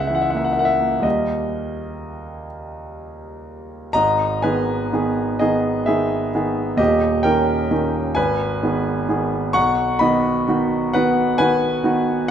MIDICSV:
0, 0, Header, 1, 2, 480
1, 0, Start_track
1, 0, Key_signature, 5, "minor"
1, 0, Tempo, 946372
1, 531, Time_signature, 6, 3, 24, 8
1, 1498, Tempo, 991736
1, 2458, Tempo, 944882
1, 2938, Tempo, 917431
1, 6300, End_track
2, 0, Start_track
2, 0, Title_t, "Grand piano"
2, 0, Program_c, 0, 0
2, 0, Control_c, 0, 64, 127
2, 0, Note_on_c, 0, 37, 48
2, 0, Note_on_c, 0, 49, 34
2, 0, Note_on_c, 0, 76, 60
2, 0, Note_on_c, 0, 78, 60
2, 37, Note_off_c, 0, 76, 0
2, 37, Note_on_c, 0, 76, 59
2, 52, Note_on_c, 0, 52, 38
2, 75, Note_off_c, 0, 78, 0
2, 75, Note_on_c, 0, 78, 63
2, 77, Note_off_c, 0, 76, 0
2, 110, Note_on_c, 0, 76, 64
2, 114, Note_off_c, 0, 78, 0
2, 123, Note_off_c, 0, 49, 0
2, 150, Note_off_c, 0, 76, 0
2, 154, Note_on_c, 0, 78, 62
2, 172, Note_on_c, 0, 58, 35
2, 186, Note_on_c, 0, 76, 59
2, 191, Note_off_c, 0, 78, 0
2, 225, Note_off_c, 0, 76, 0
2, 226, Note_on_c, 0, 78, 60
2, 242, Note_off_c, 0, 52, 0
2, 264, Note_off_c, 0, 78, 0
2, 267, Note_on_c, 0, 76, 58
2, 290, Note_on_c, 0, 70, 39
2, 300, Note_on_c, 0, 78, 64
2, 303, Note_off_c, 0, 76, 0
2, 330, Note_on_c, 0, 76, 75
2, 338, Note_off_c, 0, 78, 0
2, 362, Note_off_c, 0, 58, 0
2, 408, Note_on_c, 0, 58, 33
2, 481, Note_off_c, 0, 70, 0
2, 505, Note_on_c, 0, 39, 44
2, 509, Note_off_c, 0, 37, 0
2, 511, Note_off_c, 0, 58, 0
2, 513, Note_on_c, 0, 55, 31
2, 519, Note_on_c, 0, 58, 31
2, 522, Note_on_c, 0, 75, 63
2, 525, Note_on_c, 0, 70, 31
2, 526, Note_off_c, 0, 76, 0
2, 539, Control_c, 0, 64, 0
2, 627, Control_c, 0, 64, 127
2, 1252, Note_off_c, 0, 75, 0
2, 1950, Note_off_c, 0, 39, 0
2, 1953, Note_off_c, 0, 55, 0
2, 1956, Note_off_c, 0, 58, 0
2, 1959, Note_off_c, 0, 70, 0
2, 1972, Note_on_c, 0, 82, 88
2, 1977, Note_on_c, 0, 32, 50
2, 1978, Note_on_c, 0, 75, 72
2, 1984, Note_on_c, 0, 44, 54
2, 1989, Control_c, 0, 64, 0
2, 2077, Control_c, 0, 64, 127
2, 2203, Note_off_c, 0, 75, 0
2, 2210, Note_on_c, 0, 80, 71
2, 2213, Note_off_c, 0, 32, 0
2, 2215, Note_on_c, 0, 71, 57
2, 2216, Note_off_c, 0, 44, 0
2, 2217, Note_off_c, 0, 82, 0
2, 2218, Note_on_c, 0, 51, 39
2, 2222, Note_on_c, 0, 59, 40
2, 2224, Note_on_c, 0, 68, 46
2, 2436, Note_off_c, 0, 51, 0
2, 2437, Note_off_c, 0, 59, 0
2, 2438, Note_off_c, 0, 68, 0
2, 2455, Note_on_c, 0, 51, 43
2, 2457, Note_on_c, 0, 59, 39
2, 2460, Note_on_c, 0, 68, 45
2, 2676, Note_off_c, 0, 71, 0
2, 2678, Note_off_c, 0, 51, 0
2, 2679, Note_off_c, 0, 59, 0
2, 2680, Note_off_c, 0, 68, 0
2, 2690, Note_on_c, 0, 75, 74
2, 2693, Note_off_c, 0, 80, 0
2, 2697, Note_on_c, 0, 68, 61
2, 2700, Note_on_c, 0, 51, 44
2, 2703, Note_on_c, 0, 59, 43
2, 2917, Note_off_c, 0, 51, 0
2, 2919, Note_off_c, 0, 59, 0
2, 2919, Note_off_c, 0, 68, 0
2, 2927, Note_on_c, 0, 76, 78
2, 2933, Note_off_c, 0, 75, 0
2, 2933, Note_on_c, 0, 68, 59
2, 2940, Note_on_c, 0, 51, 42
2, 2943, Note_on_c, 0, 59, 41
2, 3157, Note_off_c, 0, 51, 0
2, 3159, Note_off_c, 0, 59, 0
2, 3177, Note_off_c, 0, 68, 0
2, 3182, Note_on_c, 0, 51, 41
2, 3184, Note_on_c, 0, 59, 44
2, 3185, Note_on_c, 0, 68, 48
2, 3395, Note_off_c, 0, 51, 0
2, 3396, Note_off_c, 0, 59, 0
2, 3397, Note_off_c, 0, 68, 0
2, 3400, Note_on_c, 0, 39, 54
2, 3405, Note_on_c, 0, 75, 79
2, 3408, Note_off_c, 0, 76, 0
2, 3412, Note_on_c, 0, 27, 55
2, 3414, Note_on_c, 0, 67, 65
2, 3422, Control_c, 0, 64, 0
2, 3507, Control_c, 0, 64, 127
2, 3634, Note_off_c, 0, 67, 0
2, 3636, Note_off_c, 0, 39, 0
2, 3643, Note_off_c, 0, 27, 0
2, 3643, Note_on_c, 0, 79, 82
2, 3646, Note_off_c, 0, 75, 0
2, 3650, Note_on_c, 0, 70, 68
2, 3655, Note_on_c, 0, 51, 42
2, 3657, Note_on_c, 0, 61, 42
2, 3873, Note_off_c, 0, 51, 0
2, 3874, Note_off_c, 0, 61, 0
2, 3891, Note_off_c, 0, 70, 0
2, 3895, Note_on_c, 0, 51, 43
2, 3896, Note_on_c, 0, 61, 44
2, 3899, Note_on_c, 0, 70, 48
2, 4115, Note_off_c, 0, 51, 0
2, 4116, Note_off_c, 0, 61, 0
2, 4117, Note_off_c, 0, 70, 0
2, 4123, Note_on_c, 0, 80, 84
2, 4131, Note_off_c, 0, 79, 0
2, 4132, Note_on_c, 0, 71, 67
2, 4135, Note_on_c, 0, 32, 59
2, 4144, Control_c, 0, 64, 0
2, 4218, Control_c, 0, 64, 127
2, 4369, Note_off_c, 0, 32, 0
2, 4377, Note_on_c, 0, 51, 43
2, 4380, Note_on_c, 0, 59, 45
2, 4382, Note_on_c, 0, 68, 45
2, 4598, Note_off_c, 0, 51, 0
2, 4599, Note_off_c, 0, 59, 0
2, 4600, Note_off_c, 0, 68, 0
2, 4616, Note_on_c, 0, 51, 44
2, 4620, Note_on_c, 0, 59, 43
2, 4621, Note_on_c, 0, 68, 50
2, 4838, Note_off_c, 0, 71, 0
2, 4839, Note_off_c, 0, 51, 0
2, 4840, Note_off_c, 0, 59, 0
2, 4841, Note_off_c, 0, 68, 0
2, 4848, Note_on_c, 0, 85, 98
2, 4853, Note_on_c, 0, 78, 79
2, 4855, Note_off_c, 0, 80, 0
2, 4858, Note_on_c, 0, 35, 61
2, 4870, Control_c, 0, 64, 0
2, 4945, Control_c, 0, 64, 127
2, 5081, Note_off_c, 0, 78, 0
2, 5088, Note_on_c, 0, 83, 82
2, 5093, Note_off_c, 0, 35, 0
2, 5095, Note_on_c, 0, 75, 61
2, 5096, Note_off_c, 0, 85, 0
2, 5098, Note_on_c, 0, 51, 46
2, 5101, Note_on_c, 0, 59, 44
2, 5105, Note_on_c, 0, 66, 50
2, 5322, Note_off_c, 0, 51, 0
2, 5324, Note_off_c, 0, 59, 0
2, 5326, Note_off_c, 0, 66, 0
2, 5346, Note_on_c, 0, 51, 46
2, 5349, Note_on_c, 0, 59, 44
2, 5350, Note_on_c, 0, 66, 50
2, 5563, Note_off_c, 0, 75, 0
2, 5567, Note_off_c, 0, 51, 0
2, 5568, Note_off_c, 0, 59, 0
2, 5569, Note_off_c, 0, 66, 0
2, 5581, Note_off_c, 0, 83, 0
2, 5582, Note_on_c, 0, 78, 89
2, 5587, Note_on_c, 0, 71, 66
2, 5593, Note_on_c, 0, 51, 43
2, 5596, Note_on_c, 0, 59, 43
2, 5597, Note_on_c, 0, 66, 50
2, 5803, Note_off_c, 0, 51, 0
2, 5805, Note_off_c, 0, 59, 0
2, 5805, Note_off_c, 0, 66, 0
2, 5805, Note_off_c, 0, 71, 0
2, 5815, Note_on_c, 0, 80, 93
2, 5818, Note_on_c, 0, 71, 70
2, 5819, Note_off_c, 0, 78, 0
2, 5824, Note_on_c, 0, 51, 48
2, 5828, Note_on_c, 0, 59, 45
2, 5830, Note_on_c, 0, 66, 51
2, 6035, Note_off_c, 0, 51, 0
2, 6037, Note_off_c, 0, 59, 0
2, 6038, Note_off_c, 0, 66, 0
2, 6056, Note_on_c, 0, 51, 48
2, 6059, Note_on_c, 0, 59, 46
2, 6061, Note_on_c, 0, 66, 52
2, 6274, Note_off_c, 0, 71, 0
2, 6276, Note_off_c, 0, 51, 0
2, 6278, Note_off_c, 0, 59, 0
2, 6279, Note_off_c, 0, 66, 0
2, 6293, Note_off_c, 0, 80, 0
2, 6300, End_track
0, 0, End_of_file